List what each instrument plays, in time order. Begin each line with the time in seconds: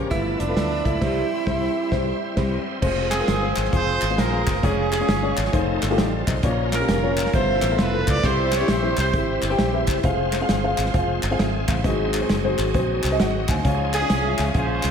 0.10 fingered electric bass G1, upright piano G2 A3 E4 F4 B4, tonewheel organ F3 B3 E4 A4, tenor saxophone E4, string section E5 A5 B5 E6, kick, closed hi-hat
0.40 fingered electric bass F1, tenor saxophone D4, closed hi-hat
0.48 upright piano A3 E4 F4 B4
0.56 fingered electric bass D2, snare, closed hi-hat
0.84 fingered electric bass C#2, upright piano A3 E4 F4 D5, tenor saxophone E4, kick, closed hi-hat
1.00 fingered electric bass C2, upright piano C3 G3 C4 E4 C5, tonewheel organ G3 C4 E4 C5, string section E5 G5 C6, kick, snare, crash
1.46 fingered electric bass C2, upright piano G3 C4 E4 C5, kick, snare
1.91 fingered electric bass C2, upright piano G3 C4 E4 C5, kick, snare
2.36 fingered electric bass C2, upright piano G3 C4 E4 C5, kick, snare, crash
2.81 fingered electric bass F1, tonewheel organ G3 C4 F4 C5, upright piano G#3 C4 F4 C5, kick, crash
2.87 tonewheel organ G#3
3.11 horn section C4 F4 G#4, snare, clap, closed hi-hat
3.19 upright piano G#3 C4 F4 A#4
3.28 fingered electric bass G1, snare, closed hi-hat
3.42 upright piano G#3 C4 F4 C5
3.56 fingered electric bass G#1, clap, closed hi-hat
3.65 snare
3.72 fingered electric bass F1, upright piano G#3 C4 F4 G#4, horn section F4 G#4 C5, kick, closed hi-hat
4.02 fingered electric bass G#1, clap, closed hi-hat
4.09 upright piano G#3 C4 F4 C5
4.18 fingered electric bass A#1, horn section F4 A#4, snare, closed hi-hat
4.32 upright piano G#3 C4 F4 C5
4.47 fingered electric bass F#1, kick, clap, closed hi-hat
4.62 fingered electric bass F1, upright piano G#3 C#4 F4 C#5, tonewheel organ G#3 C#4 F4 C#5, horn section C#4 F4 G#4, kick, closed hi-hat
4.92 horn section C#4 F4 G#4, clap, closed hi-hat
5.00 upright piano G#3 C#4 F4 C#5
5.08 fingered electric bass G1, snare, closed hi-hat
5.22 upright piano G#3 C#4 F4 C#5
5.37 fingered electric bass G#1, clap, closed hi-hat
5.45 snare
5.52 fingered electric bass F1, tonewheel organ F3 C4 D#4 G#4, upright piano A3 D#4 F4 C5, kick, closed hi-hat
5.60 tonewheel organ A4
5.82 fingered electric bass G1, clap, closed hi-hat
5.90 upright piano A3 D#4 F4 G4
5.98 fingered electric bass A1, tonewheel organ C4 A4, upright piano D5, snare, closed hi-hat
6.27 fingered electric bass B1, tonewheel organ D#4 C5, upright piano C5 D#5, kick, clap, closed hi-hat
6.43 fingered electric bass A#1, upright piano A#2 A#3 C#4 F4 C#5, tonewheel organ F3 A#3 C4 A#4, kick, closed hi-hat
6.50 tonewheel organ C#4
6.71 horn section C#4 F4 A#4, snare, clap, closed hi-hat
6.80 upright piano A#3 C#4 F4 G4
6.88 fingered electric bass F1, snare, closed hi-hat
7.02 upright piano A#3 C#4 F4 C#5
7.17 clap, closed hi-hat
7.26 snare
7.33 fingered electric bass G1, upright piano G2 B3 F4 A4 E5, tonewheel organ B2 F3 A4 E5, horn section E4 F4 C5, kick, closed hi-hat
7.62 fingered electric bass A1, clap, closed hi-hat
7.70 upright piano B3 F4 A4 E5
7.78 fingered electric bass F1, horn section B4, snare, closed hi-hat
7.92 upright piano B3 F4 A4 B4
8.07 fingered electric bass C#2, horn section D5, kick, clap, closed hi-hat
8.23 fingered electric bass C2, upright piano C3 C4 E4 G4 E5, tonewheel organ G3 C4 E4 C5, horn section E4 G4 C5, kick, closed hi-hat
8.52 horn section C#5, snare, clap, closed hi-hat
8.60 upright piano C4 E4 G4 E5
8.68 fingered electric bass A#1, horn section C5, snare, closed hi-hat
8.82 upright piano C4 E4 G4 C5
8.97 fingered electric bass C2, horn section E4 G4 C5, clap, closed hi-hat
9.13 fingered electric bass G#1, upright piano C4 E4 G4 E5, kick, closed hi-hat
9.42 fingered electric bass G1, clap, closed hi-hat
9.50 upright piano C4 E4 G4 G5
9.58 fingered electric bass A#1, snare, closed hi-hat
9.73 upright piano C4 E4 G4 E5
9.87 fingered electric bass F#1, kick, clap, closed hi-hat
10.03 fingered electric bass F1, tonewheel organ G#3 C4 F4 C5, upright piano C4 F4 G#4 F5, kick, closed hi-hat
10.32 snare, clap, closed hi-hat
10.41 upright piano C4 F4 G#4 F5
10.49 fingered electric bass G1, snare, closed hi-hat
10.63 upright piano C4 F4 G#4 F5
10.77 fingered electric bass G#1, clap, closed hi-hat
10.85 snare
10.94 fingered electric bass F1, upright piano C4 F4 G#4 F5, kick, closed hi-hat
11.23 fingered electric bass G1, tonewheel organ C5 G#5, clap, closed hi-hat
11.31 upright piano C4 F4 G#4 F5
11.39 fingered electric bass G#1, tonewheel organ G#4 F5, upright piano C5 E5, snare, closed hi-hat
11.67 fingered electric bass A1, tonewheel organ E4 C5, upright piano F5, kick, clap, closed hi-hat
11.84 fingered electric bass G#1, upright piano G#2 C4 F#4 G#4 D#5, tonewheel organ F#3 C4 D#4 G#4, kick, closed hi-hat
12.13 clap, closed hi-hat
12.21 upright piano C4 F#4 G#4 C5
12.29 fingered electric bass F#1, snare, closed hi-hat
12.44 upright piano C4 F#4 G#4 C5
12.58 fingered electric bass G#1, clap, closed hi-hat
12.74 fingered electric bass A#1, upright piano C4 F#4 G#4 C5, kick, closed hi-hat
13.03 fingered electric bass C2, clap, closed hi-hat
13.11 upright piano C4 F#4 G#4 D#5
13.20 fingered electric bass G#1, tonewheel organ F#4 D#5, upright piano D#5 F#5, snare, closed hi-hat
13.48 fingered electric bass D2, tonewheel organ D#4 C5, upright piano F5 G#5, kick, clap, closed hi-hat
13.64 fingered electric bass C#2, upright piano C#3 C#4 F4 G#4 F5, tonewheel organ F3 G#3 C#4 G#4, kick, closed hi-hat
13.94 horn section C#4 F4 G#4, clap, closed hi-hat
14.01 upright piano C#4 F4 G#4 C#5
14.10 fingered electric bass C2, snare, closed hi-hat
14.24 upright piano C#4 F4 G#4 E5
14.38 fingered electric bass C#2, clap, closed hi-hat
14.54 fingered electric bass A#1, upright piano C#4 F4 G#4 F5, horn section F4 G#4 C5, kick, closed hi-hat
14.83 fingered electric bass C2, clap, closed hi-hat